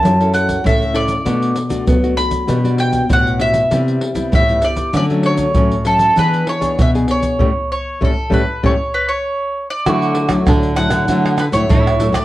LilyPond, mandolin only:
\new Staff \with { instrumentName = "Mandolin" } { \time 4/4 \key d \major \tempo 4 = 98 a''8 fis''8 e''8 d''4. r8 b''8~ | b''8 g''8 fis''8 e''4. e''8 d''8 | d''8 cis''4 a'8 b'8 cis''8 e''8 cis''8~ | cis''8 cis''8 a'8 b'8 cis''8 b'16 cis''4 d''16~ |
d''4 r8 fis''4 b'16 cis''4 d''16 | }